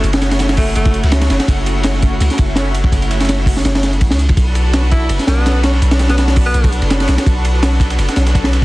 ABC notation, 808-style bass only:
X:1
M:4/4
L:1/16
Q:"Swing 16ths" 1/4=166
K:F#m
V:1 name="808-style bass" clef=bass
F,,,8 F,,,3 C,,3 F,,, z | F,,,8 C,, z F,,,6 | F,,,8 F,,,4 B,,, C,,3 | B,,,8 F,,, z B,,,6 |
B,,,8 B,,,3 F,,,3 B,,, z | B,,,8 F,,, z B,,,6 |]